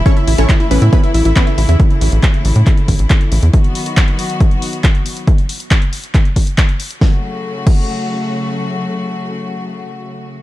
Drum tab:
CC |----------------|----------------|----------------|----------------|
HH |xxoxxxoxxxoxxxox|xxoxxxoxxxoxxxox|xxoxxxoxxxoxxxox|xxoxxxoxxxoxxxox|
CP |----x-------x---|----x---x---x---|----x-------x---|----x---x---x---|
SD |----------------|----------------|----------------|----------------|
BD |o---o---o---o---|o---o---o-o-o---|o---o---o---o---|o---o---o-o-o---|

CC |------x---------|----------------|
HH |----------------|----------------|
CP |----------------|----------------|
SD |o---------------|----------------|
BD |o-----o---------|----------------|